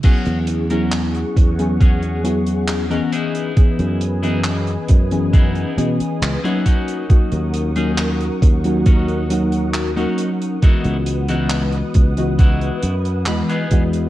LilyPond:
<<
  \new Staff \with { instrumentName = "String machine" } { \time 4/4 \key e \lydian \tempo 4 = 68 <gis' fis'' cis'''>2.~ <gis' fis'' cis'''>8 <b' gis'' dis'''>8~ | <b' gis'' dis'''>2.~ <b' gis'' dis'''>8 <ais' fis'' cis'''>8~ | <ais' fis'' cis'''>1 | <b' fis'' dis'''>1 | }
  \new Staff \with { instrumentName = "Clean electric guitar" } { \time 4/4 \key e \lydian << { r1 | r1 | r1 | r2. b''4 | } \\ { <cis' fis' gis'>8 r16 <cis' fis' ais'>16 r4 <cis' fis' gis'>8 r8. <cis' fis' ais'>16 <b dis' e' gis'>8~ | <b dis' e' gis'>8 r16 <b dis' e' gis'>16 r4 <b dis' e' gis'>8 r8. <b dis' e' gis'>16 <cis' dis' fis'>8~ | <cis' dis' fis'>8 r16 <cis' dis' gis'>16 r4 <cis' dis' fis'>8 r8. <cis' dis' fis'>16 r8 | <b dis' e' fis'>8 r16 <b dis' e' fis'>16 r4 <b dis' e' fis'>8 r8. <b dis' e' gis'>16 r8 | } >> }
  \new Staff \with { instrumentName = "FM electric piano" } { \time 4/4 \key e \lydian <fis b cis' e' gis'>8. <fis b cis' e' gis'>4 <fis b cis' e' gis'>8. <fis b cis' e' gis'>8. <e b cis' gis' dis''>8. | <e b cis' gis' dis''>8. <e b cis' gis' dis''>4 <e b cis' gis' dis''>8. <e b cis' gis' dis''>8. <fis ais cis' dis' fis'>8. | <fis ais cis' dis' fis'>8. <fis ais cis' dis' fis'>4 <fis ais cis' dis' fis'>8. <fis ais cis' dis' fis'>8. <fis ais cis' dis' fis'>8. | <e gis b fis' dis''>8. <e gis b fis' dis''>4 <e gis b fis' dis''>8. r8 <e gis b fis' dis''>8 <e gis b fis' dis''>8 | }
  \new Staff \with { instrumentName = "Fretless electric bass" } { \clef bass \time 4/4 \key e \lydian r16 e,4 r16 e,4.~ e,16 r8. | r16 fis,4 r16 fis,8. r16 b,16 r16 cis,16 r8. | r16 dis,4 r16 dis,4.~ dis,16 r8. | r16 cis,4 r16 cis,8. r16 fis,8 e,16 r16 e,8 | }
  \new DrumStaff \with { instrumentName = "Drums" } \drummode { \time 4/4 <cymc hh bd>16 hh16 hh16 hh16 <hc hh>16 hh16 <hh bd>16 hh16 <hh bd>16 hh16 hh16 hh16 <hc hh>16 hh16 hh16 hh16 | <hh bd>16 hh16 hh16 hh16 <hc hh>16 hh16 <hh bd>16 hh16 <hh bd>16 hh16 hh16 hh16 <hc hh>16 hh16 <hh bd>16 hh16 | <hh bd>16 hh16 hh16 hh16 <hc hh>16 hh16 <hh bd>16 hh16 <hh bd>16 hh16 hh16 hh16 <hc hh>16 hh16 hh16 hh16 | <hh bd>16 hh16 hh16 hh16 <hc hh>16 hh16 <hh bd>16 hh16 <hh bd>16 hh16 hh16 hh16 <hc hh>16 hh16 <hh bd>16 hh16 | }
>>